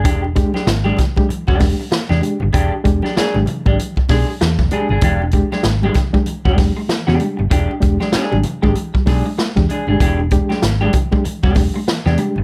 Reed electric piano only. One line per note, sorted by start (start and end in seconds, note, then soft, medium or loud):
0.05 0.20 E3 medium
0.36 0.51 G#3 loud
0.36 0.51 D4 medium
0.36 0.52 G4 loud
0.85 0.96 G#3 medium
0.85 0.96 D4 medium
0.85 0.96 G4 medium
0.98 1.14 E3 medium
1.17 1.27 G#3 medium
1.17 1.27 D4 medium
1.17 1.27 G4 loud
1.29 1.44 E3 medium
1.60 1.76 G#3 medium
1.60 1.76 D4 medium
1.60 1.76 G4 medium
1.79 1.84 D4 soft
1.79 1.84 G4 soft
1.91 2.07 E3 medium
2.22 2.38 G#3 medium
2.22 2.38 D4 medium
2.22 2.38 G4 medium
2.42 2.46 D4 soft
2.42 2.46 G4 soft
2.54 2.69 E3 medium
2.84 3.00 G#3 loud
2.84 3.00 D4 medium
2.84 3.00 G4 loud
3.03 3.08 D4 soft
3.03 3.08 G4 soft
3.34 3.45 G#3 medium
3.34 3.45 D4 medium
3.34 3.45 G4 medium
3.47 3.62 E3 medium
3.65 3.76 G#3 medium
3.65 3.76 D4 medium
3.65 3.76 G4 medium
3.78 3.94 E3 medium
4.09 4.25 G#3 medium
4.09 4.25 D4 medium
4.09 4.25 G4 medium
4.28 4.33 D4 soft
4.28 4.33 G4 soft
4.40 4.48 D4 soft
4.40 4.48 G4 soft
4.59 4.69 E3 medium
4.72 4.87 G#3 medium
4.72 4.87 D4 medium
4.72 4.87 G4 medium
5.03 5.18 E3 medium
5.34 5.49 G#3 medium
5.34 5.49 D4 medium
5.34 5.49 G4 loud
5.52 5.57 D4 soft
5.52 5.57 G4 soft
5.82 5.93 G#3 medium
5.82 5.93 D4 medium
5.82 5.94 G4 medium
5.95 6.11 E3 medium
6.13 6.24 G#3 medium
6.13 6.24 D4 medium
6.13 6.25 G4 loud
6.26 6.42 E3 medium
6.56 6.73 G#3 medium
6.56 6.73 D4 medium
6.56 6.73 G4 medium
6.76 6.81 D4 soft
6.76 6.81 G4 soft
6.88 7.04 E3 medium
7.19 7.35 G#3 medium
7.19 7.35 D4 medium
7.19 7.36 G4 medium
7.38 7.44 D4 soft
7.38 7.44 G4 soft
7.50 7.66 E3 medium
7.80 7.97 G#3 medium
7.80 7.97 D4 medium
7.80 7.97 G4 loud
8.31 8.42 G#3 medium
8.31 8.42 D4 medium
8.31 8.42 G4 medium
8.44 8.60 E3 medium
8.63 8.73 G#3 medium
8.63 8.73 D4 medium
8.63 8.74 G4 loud
8.76 8.91 E3 medium
9.06 9.22 G#3 medium
9.06 9.22 D4 medium
9.06 9.22 G4 medium
9.56 9.67 G#3 medium
9.56 9.67 D4 medium
9.56 9.67 G4 medium
9.70 9.85 E3 medium
9.88 9.98 G#3 medium
9.88 9.99 D4 medium
9.88 9.99 G4 medium
10.01 10.16 E3 medium
10.32 10.47 G#3 medium
10.32 10.47 D4 medium
10.32 10.47 G4 loud
10.51 10.55 D4 soft
10.51 10.55 G4 soft
10.81 10.92 G#3 medium
10.81 10.92 D4 medium
10.81 10.92 G4 medium
10.93 11.09 E3 medium
11.12 11.22 G#3 medium
11.12 11.22 D4 medium
11.12 11.23 G4 loud
11.25 11.40 E3 medium
11.56 11.71 G#3 medium
11.56 11.72 D4 medium
11.56 11.72 G4 medium
11.75 11.80 D4 soft
11.75 11.80 G4 soft
11.88 12.03 E3 medium
12.18 12.34 G#3 medium
12.18 12.34 D4 medium
12.18 12.34 G4 medium
12.37 12.42 D4 soft
12.37 12.42 G4 soft